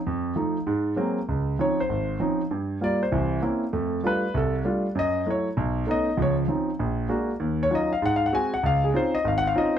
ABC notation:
X:1
M:4/4
L:1/8
Q:"Swing" 1/4=196
K:Abmix
V:1 name="Grand piano"
z8 | [K:Db] z2 d c3 z2 | z2 =d c3 z2 | z2 _c2 =A z3 |
e2 d z3 e2 | d z6 z | z d e f (3g f g a g | f A c e (3f g f e z |]
V:2 name="Grand piano"
F,,2 [F,=A,E] z _A,,2 [G,_A,B,C] z | [K:Db] D,,2 [F,CDE] z A,,,2 [F,CDE] z | =G,,2 [=G,B,F] z [C,,=E,]2 [B,CD=E] z | [F,,=A,]2 [=G,A,=DF] z C,,2 [G,A,DF] z |
G,,2 [G,=A,_F] z _C,,2 [A,_CDE] z | [D,,F,]2 [F,CDE] z B,,,2 [A,B,=D^F] z | E,,2 [G,DEF] z A,,2 [A,CG] z | D,,2 [CDEF] z A,,,2 [CDEF] z |]